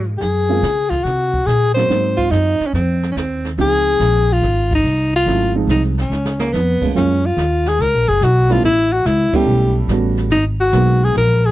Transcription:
Already playing: G#2
0.18 G4, brush sweep, snare
0.22 F#2 G#4
0.49 G#3 A#3 C4 F4
0.62 C#3, snare, hi-hat pedal
0.90 F4, kick, snare
1.04 C3 F#4, brush sweep, snare
1.34 kick
1.46 A#2 G#4, snare, hi-hat pedal
1.74 F#3 A#3 C4 F#4 C5, snare
1.89 G#2 F#3 A#3 C4 D#4, brush sweep, snare
2.17 F4, kick
2.31 F#2 D#4, snare, hi-hat pedal
2.60 muted upright bass stroke, snare
2.67 C#4
2.73 F2 C4, brush sweep, snare
3.03 snare
3.11 D#2 C#4
3.17 C4, snare, hi-hat pedal
3.44 snare
3.58 C#2 F3 G#3 C4 D#4 G#4, brush sweep, snare
4.00 A#1, snare, hi-hat pedal
4.33 F4
4.42 G#1, brush sweep, snare
4.71 D#4, kick, ride
4.84 C2, hi-hat pedal
5.16 F4
5.26 G#1 F#3 A3 C#4 E4, brush sweep, snare
5.55 F3 G#3 C4 D#4
5.67 C2 D#4, snare, hi-hat pedal
5.83 snare
5.98 C#4, snare
6.10 C#2, snare
6.25 snare
6.39 A#3, snare
6.53 F2 B3, snare, hi-hat pedal
6.81 F#2 F3 G#3 A#3 C#4, muted upright bass stroke, kick, crash
6.95 F#2 F#3 G#3 A#3 C#4 F4, brush sweep, snare
7.26 F4
7.37 D#2, snare, hi-hat pedal
7.66 G#4, snare
7.79 C#2 A#4, brush sweep, snare
7.94 A#1
8.08 F#1 G#4
8.21 B1 F#4, snare, hi-hat pedal
8.49 G3 A3 B3 C#4 E4 F4, snare
8.63 A1 E4, brush sweep, snare
8.93 F#4
9.05 C#2 E4, snare, hi-hat pedal
9.33 G3 A3 B3 C#4 E4 G4, muted upright bass stroke, kick, crash
9.46 B1, brush sweep
9.88 A1 G3 A3 B3 C#4 F#4, snare, hi-hat pedal
10.17 snare
10.30 G#1 D#4, brush sweep, snare
10.60 F#4
10.72 B1 F#3 G#3 A#3 B3 D#4, snare, hi-hat pedal
11.04 G#4
11.15 A#1 A#4, brush sweep, snare
11.46 G#4

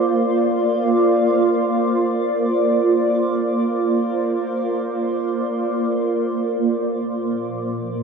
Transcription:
Already playing: A#3 F4 C5 D5
6.88 A#2
7.23 F3
7.62 A4
7.87 C4

